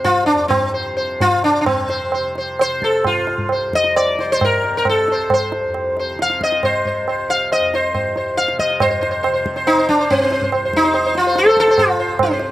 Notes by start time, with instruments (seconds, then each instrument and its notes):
Already playing: tanpura C2 F2 C3
0.04 sitar F4, tabla tin, tabla ge
0.26 sitar D4, tabla te
0.33 tanpura F2
0.48 sitar C4, tabla na, tabla ge
0.74 sitar C5
0.85 tanpura C3
0.97 sitar C5
1.20 sitar F4, tabla tin, tabla ge
1.36 tanpura C3
1.44 sitar D4, tabla te
1.61 sitar D4
1.66 tanpura F2, sitar C4, tabla na, tabla ge
1.89 sitar C5, tabla te
2.12 sitar C5, tabla na
2.19 tanpura C3
2.35 sitar C5, tabla te
2.59 sitar C5, tabla na
2.67 tanpura C3
2.82 sitar A4, tabla ke
3.04 sitar F4, tabla na, tabla ge
3.17 tanpura C2
3.27 tabla te
3.38 tabla ge
3.49 sitar C5, tabla na
3.68 tanpura F2
3.73 sitar D#5, tabla ke
3.84 tabla te
3.96 sitar D5, tabla na
4.17 tanpura C3, sitar C5, tabla te
4.32 sitar C5
4.41 sitar A#4, tabla na, tabla ge
4.64 tanpura C3, tabla te
4.77 sitar A#4
4.85 tabla na, tabla ge
4.89 sitar A4
5.08 sitar C5, tabla te
5.16 tanpura C2
5.30 sitar C5, tabla na, tabla ge
5.52 tabla te
5.65 tanpura F2
5.74 tabla na
5.97 sitar C5, tabla te
6.15 tanpura C3
6.19 sitar F5, tabla te
6.30 tabla te
6.41 sitar D#5, tabla ke
6.52 tabla te
6.63 tanpura C3, sitar C5, tabla na, tabla ge
6.85 sitar C5, tabla ge
7.08 tanpura C2, sitar C5, tabla na
7.29 sitar F5, tabla te
7.52 sitar D#5, tabla na
7.58 tanpura F2
7.74 sitar C5, tabla te
7.95 sitar C5, tabla na, tabla ge
8.06 tanpura C3
8.16 sitar C5, tabla te
8.37 sitar F5, tabla te
8.48 tanpura C3, tabla te
8.59 sitar D#5, tabla ke
8.70 tabla te
8.80 tanpura F2, sitar C5, tabla na, tabla ge
8.90 sitar C5
9.01 sitar C5, tabla te
9.11 sitar C5
9.23 sitar C5, tabla na
9.28 tanpura C3
9.34 sitar C5
9.46 tabla ke
9.56 sitar C5, tabla te
9.67 sitar D#4, tabla na
9.74 tanpura C3
9.78 sitar C5
9.89 sitar D4, tabla ke
10.01 sitar C5
10.10 sitar C4, tabla na, tabla ge
10.21 tanpura C2, sitar C5
10.31 sitar C5, tabla te
10.42 sitar C5, tabla ge
10.52 sitar C5, tabla na
10.65 tanpura F2, sitar C5
10.73 sitar D#4, tabla ke
10.84 sitar C5, tabla te
10.94 sitar C5, tabla na
11.06 sitar C5
11.12 tanpura C3, tabla te
11.17 sitar F4
11.27 sitar C5
11.36 sitar A4, tabla te
11.46 sitar C5, tabla te
11.57 tanpura C3, sitar A4, tabla ke
11.68 sitar C5, tabla te
11.78 sitar F4, tabla na, tabla ge
12.00 sitar C5
12.05 tanpura C2
12.19 sitar C4, tabla na, tabla ge
12.31 sitar C5
12.39 tabla te